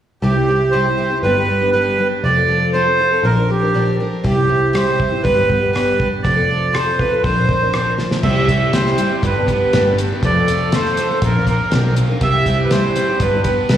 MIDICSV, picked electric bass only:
0, 0, Header, 1, 2, 480
1, 0, Start_track
1, 0, Key_signature, 0, "major"
1, 0, Tempo, 502513
1, 211, Time_signature, 4, 2, 24, 8
1, 5490, Tempo, 496689
1, 13246, End_track
2, 0, Start_track
2, 0, Title_t, "Picked electric bass"
2, 0, Program_c, 0, 34
2, 214, Note_on_c, 0, 36, 65
2, 1157, Note_off_c, 0, 36, 0
2, 1173, Note_on_c, 0, 31, 71
2, 2117, Note_off_c, 0, 31, 0
2, 2136, Note_on_c, 0, 29, 81
2, 3078, Note_off_c, 0, 29, 0
2, 3089, Note_on_c, 0, 34, 73
2, 4033, Note_off_c, 0, 34, 0
2, 4056, Note_on_c, 0, 36, 75
2, 4994, Note_off_c, 0, 36, 0
2, 5017, Note_on_c, 0, 31, 67
2, 5956, Note_off_c, 0, 31, 0
2, 5977, Note_on_c, 0, 29, 72
2, 6920, Note_off_c, 0, 29, 0
2, 6931, Note_on_c, 0, 34, 66
2, 7877, Note_off_c, 0, 34, 0
2, 7896, Note_on_c, 0, 36, 101
2, 8635, Note_off_c, 0, 36, 0
2, 8855, Note_on_c, 0, 31, 86
2, 9226, Note_off_c, 0, 31, 0
2, 9342, Note_on_c, 0, 31, 92
2, 9710, Note_off_c, 0, 31, 0
2, 9819, Note_on_c, 0, 29, 95
2, 10555, Note_off_c, 0, 29, 0
2, 10778, Note_on_c, 0, 34, 92
2, 11146, Note_off_c, 0, 34, 0
2, 11266, Note_on_c, 0, 35, 99
2, 11631, Note_off_c, 0, 35, 0
2, 11735, Note_on_c, 0, 36, 101
2, 12471, Note_off_c, 0, 36, 0
2, 12691, Note_on_c, 0, 31, 86
2, 13060, Note_off_c, 0, 31, 0
2, 13172, Note_on_c, 0, 36, 84
2, 13246, Note_off_c, 0, 36, 0
2, 13246, End_track
0, 0, End_of_file